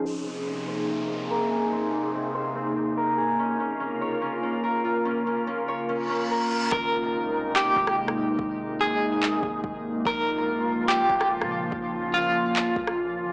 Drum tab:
CP |----------------|----------------|----------------|----------------|
SD |----------------|----------------|----------------|----------------|
BD |----------------|----------------|----------------|----------------|

CP |--------x-------|--------x-------|--------x-------|--------x-------|
SD |-----------r-r--|----------------|-----------r-r--|-----------r----|
BD |o---------o-----|o---------o-o---|o---------o-----|o---------o-----|